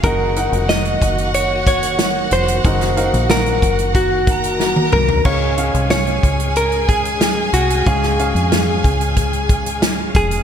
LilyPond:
<<
  \new Staff \with { instrumentName = "Violin section" } { \time 4/4 \key des \major \tempo 4 = 92 <ges' ges''>1~ | <ges' ges''>2~ <ges' ges''>8 <bes' bes''>4. | <aes' aes''>1~ | <aes' aes''>1 | }
  \new Staff \with { instrumentName = "Clean electric guitar" } { \time 4/4 \key des \major bes'4 ees''4 des''8 des''4 c''8~ | c''4 bes'4 ges'4. bes'8 | des''4 des''4 bes'8 aes'4 ges'8 | aes'2. r8 aes'8 | }
  \new Staff \with { instrumentName = "Grand piano" } { \time 4/4 \key des \major <ees' bes' ges''>8 <ees' bes' ges''>4. r2 | <ees' bes' ges''>8 <ees' bes' f'' ges''>4. r2 | <des' aes' f''>8 <des' aes' f''>4. r2 | <des' aes' f''>8 <des' aes' f''>4. r2 | }
  \new Staff \with { instrumentName = "Grand piano" } { \clef bass \time 4/4 \key des \major des4. r2 r8 | des4. r2 r8 | aes,4. r2 r8 | aes,4. r2 r8 | }
  \new Staff \with { instrumentName = "Tonewheel organ" } { \time 4/4 \key des \major <ees bes ges'>1~ | <ees bes ges'>1 | <aes des' f''>1~ | <aes des' f''>1 | }
  \new Staff \with { instrumentName = "Fingered electric bass" } { \clef bass \time 4/4 \key des \major ges,,8. f,,8. ges,,2 f,,8 | ges,,8. bes,,8. ges,,2 c,8 | des,8. c,8. des,2 c,8 | des,8. f,8. des,2 f,,8 | }
  \new DrumStaff \with { instrumentName = "Drums" } \drummode { \time 4/4 <hh bd>8 hh16 hh16 <hh sn>16 hh16 <hh bd>16 hh16 hh8 <hh bd>16 hh16 <hh sn>8 hh16 hh16 | <hh bd>16 <hh sn>16 hh16 hh16 <hh sn>16 hh16 <hh bd>16 hh16 <hh bd>8 <hh bd>16 hh16 sn16 tommh16 toml16 tomfh16 | <cymc bd>8 hh16 hh16 <hh sn>16 hh16 <hh bd>16 hh16 hh16 hh16 <hh bd>16 hh16 <hh sn>8 hh16 hh16 | <hh bd>16 sn16 hh16 hh16 <hh sn>8 <hh bd>16 hh16 <hh bd>16 hh16 <hh bd>16 hh16 <hh sn>8 <hh bd>16 hh16 | }
>>